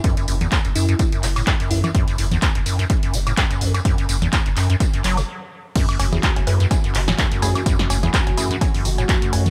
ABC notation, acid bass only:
X:1
M:4/4
L:1/16
Q:"Swing 16ths" 1/4=126
K:F#m
V:1 name="Acid bass" clef=bass
F,, F,, F,, E,, E,, F,, F,, F,, F,, F,, E, A,, F,, F,, F,,, F,, | F,, F,, F,, E,, E,, F,, F,, F,, F,, F,, E, A,, F,, F,, F,,, F,, | F,, F,, F,, E,, E,, F,, F,, F,, F,, F,, F, G,, z4 | F,, F,, F,, E,, E,, F,, F,, F,, F,, F,, E, A,, F,, F,, F,,, F,, |
F,, F,, F,, E,, E,, F,, F,, F,, F,, F,, E, A,, F,, F,, F,,, F,, |]